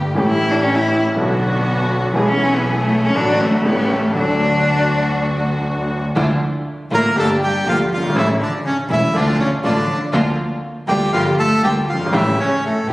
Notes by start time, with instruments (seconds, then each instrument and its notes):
Already playing: double bass G1, grand piano G1 G2 D3 A3 B3 G4, string section A3 B3 G4
0.15 double bass A1, grand piano A1 A2 E3 A3 C#4, string section A3 C#4 G4, cello A3
0.19 grand piano G4
0.26 cello E4
0.51 cello D4
0.63 cello C#4
0.75 cello E4
1.15 double bass B1, grand piano B1 B2 D3 F#3 B3 F#4, string section B3 D4 F#4
2.13 grand piano B1 B2 E3 G#3 B3, double bass B1, cello G#3, string section B3 E4 G#4
2.17 grand piano G#4
2.28 cello C#4
2.54 cello B3
2.79 cello A3
3.05 cello C#4
3.13 double bass A1, grand piano A1 A2 D3 F#3 A3 F#4, string section A3 D4 F#4
3.17 cello D4
3.42 cello A3
3.63 double bass A1, grand piano A1 A2 C#3 G3 A3, string section A3 C#4 G4, cello B3
3.67 grand piano E4
3.91 cello A3
4.14 double bass D2, grand piano D2 D3 F#3 A3 D4, string section D4 F#4, cello D4
6.15 grand piano D2 D3 F3 A3 E4, double bass D2, string section D4 E4 F4
6.91 double bass A1, grand piano A1 A2 D3 F3 A3 E4, cello A#3, string section D4 E4 F4, bandoneon A#4
7.16 grand piano G1 G2 D3 G3 A#3 G4, double bass G1, cello A3, string section A#3 D4 G4, bandoneon A4
7.43 cello G3, bandoneon G4
7.65 grand piano D2 D3 G3 A#3 G4, double bass D2, cello F3, string section A#3 D4 G4, bandoneon F4
7.91 double bass G1, cello F3, bandoneon F4
7.97 grand piano F#1
8.03 grand piano G1
8.10 grand piano G#1
8.15 double bass A1, grand piano A1 A2 C#3 E3 A3 E4, cello E3, string section A3 C#4 E4, bandoneon E4
8.40 cello D3, bandoneon D4
8.64 cello C#3, bandoneon C#4
8.89 double bass E1, grand piano E1 E2 C#3 E3 A3 E4, cello E3, string section A3 C#4 E4, bandoneon E4
9.14 grand piano D2 D3 F3 A3 F4, double bass D2, cello D3, string section A3 D4 F4, bandoneon D4
9.39 cello C#3, bandoneon C#4
9.63 grand piano A1 A2 D3 F3 A3 F4, double bass A1, cello D3, string section A3 D4 F4, bandoneon D4
10.13 double bass D2, grand piano D2 D3 F3 A#3 F4, string section A#3 D4 F4
10.87 double bass D2, grand piano D2 D3 F3 A#3 F4, cello G3, string section A#3 D4 F4, bandoneon G4
11.12 double bass G1, grand piano G1 G2 D3 G3 A#3 F4, cello F3, string section A#3 F4 G4, bandoneon F4
11.38 cello A3, bandoneon A4
11.62 double bass D2, grand piano D2 D3 G3 A#3 F4, cello G3, string section A#3 F4 G4, bandoneon G4
11.87 double bass G1, cello F3, bandoneon F4
11.95 grand piano F#1
12.00 grand piano G1
12.06 grand piano G#1
12.12 double bass A1, grand piano A1 A2 C#3 G3 A3 E4, cello E3, string section A3 C#4 G4, bandoneon E4
12.37 cello C#3, bandoneon C#4
12.62 cello A2, bandoneon A3
12.87 double bass E1, grand piano E1 E2 C#3 G3 A3 E4, cello G2, string section A3 C#4 G4